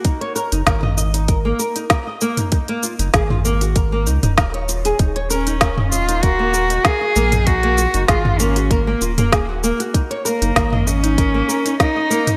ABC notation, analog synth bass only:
X:1
M:4/4
L:1/16
Q:"Swing 16ths" 1/4=97
K:Ebm
V:1 name="Analog synth bass" clef=bass
z3 G,,, A,,,6 z6 | z3 G,,, A,,,6 D,, E,,,4- E,,, | E,,,12 z2 B,,,2- | B,,,3 G,,, A,,,6 E,,,4- E,,, z |
z3 G,,, A,,,6 z6 |]